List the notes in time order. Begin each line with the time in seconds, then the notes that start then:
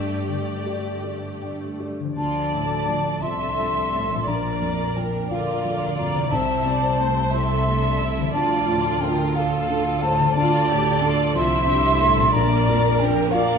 Already playing: G2 D3 A3 G4 A4 D5 G5
0.27 D3 A3
0.65 G4 D5
1.04 G4 A4 D5
1.42 D3 G5
1.80 G4 A4 D5
2.00 D3
2.04 F3
2.08 D4
2.13 D2 D5 A5
2.17 D2 D3 F4 D5
2.53 A2 E4
2.89 F3 D4
3.22 C2 C3 F4 A4 E5 C6
3.58 F3
3.93 A2
4.09 A#2
4.14 F3
4.18 F4
4.23 A#4 D5
4.27 A#1 A#2 D4 D5 A#5
4.62 F2
4.96 F3 A#4 G5
5.30 D2 D3 F4 A#4 D5 F5
5.65 F3
5.98 F2 D5 A#5
6.14 C3
6.18 C4
6.23 E4
6.28 E5 A5
6.32 C2 C3 E4 C5 E5
6.66 C3 D5
6.99 A3 C5
7.32 E4 A4 E5 C6
7.36 C4
7.66 A3 D4
8.00 C3 E4
8.17 D3
8.22 F3
8.31 D2 D5 A5
8.36 D3 F4
8.68 A2
9.01 D4 A#4 G5
9.35 F4 A4 F5
9.69 D4
10.02 A2 C5 A5
10.19 D3
10.24 A3
10.33 D2 F4 D5 A5
10.37 D2 D3 F4
10.68 A2 G4
11.01 D4 F4 A4
11.33 C2 C3 F3 E4 E5 C6
11.67 D4 G4
11.98 A2 A4
12.15 A#2
12.19 D4
12.24 F4
12.28 D4 A#4 D5
12.32 A#1 A#2 D5 A#5
12.68 F2
12.99 D4 A#4 G5
13.31 D4 F4 A#4 D5 F5